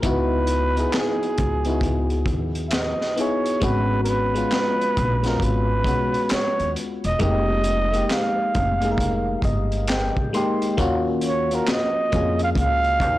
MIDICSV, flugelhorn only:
0, 0, Header, 1, 2, 480
1, 0, Start_track
1, 0, Tempo, 895522
1, 18, Time_signature, 4, 2, 24, 8
1, 7067, End_track
2, 0, Start_track
2, 0, Title_t, "Flugelhorn"
2, 0, Program_c, 0, 56
2, 38, Note_on_c, 0, 71, 91
2, 514, Note_on_c, 0, 68, 68
2, 522, Note_off_c, 0, 71, 0
2, 1226, Note_off_c, 0, 68, 0
2, 1440, Note_on_c, 0, 76, 56
2, 1469, Note_on_c, 0, 75, 67
2, 1477, Note_off_c, 0, 76, 0
2, 1704, Note_off_c, 0, 75, 0
2, 1713, Note_on_c, 0, 73, 76
2, 1950, Note_on_c, 0, 71, 90
2, 1958, Note_off_c, 0, 73, 0
2, 2156, Note_off_c, 0, 71, 0
2, 2162, Note_on_c, 0, 70, 60
2, 2192, Note_on_c, 0, 71, 95
2, 2200, Note_off_c, 0, 70, 0
2, 2827, Note_on_c, 0, 70, 72
2, 2835, Note_off_c, 0, 71, 0
2, 2914, Note_on_c, 0, 71, 92
2, 2922, Note_off_c, 0, 70, 0
2, 3392, Note_on_c, 0, 73, 81
2, 3400, Note_off_c, 0, 71, 0
2, 3607, Note_off_c, 0, 73, 0
2, 3784, Note_on_c, 0, 75, 83
2, 3860, Note_off_c, 0, 75, 0
2, 3871, Note_on_c, 0, 75, 107
2, 4352, Note_on_c, 0, 77, 81
2, 4360, Note_off_c, 0, 75, 0
2, 5065, Note_off_c, 0, 77, 0
2, 6031, Note_on_c, 0, 73, 83
2, 6189, Note_on_c, 0, 70, 77
2, 6197, Note_off_c, 0, 73, 0
2, 6275, Note_on_c, 0, 75, 91
2, 6283, Note_off_c, 0, 70, 0
2, 6657, Note_off_c, 0, 75, 0
2, 6666, Note_on_c, 0, 77, 82
2, 6702, Note_off_c, 0, 77, 0
2, 6755, Note_on_c, 0, 77, 104
2, 7067, Note_off_c, 0, 77, 0
2, 7067, End_track
0, 0, End_of_file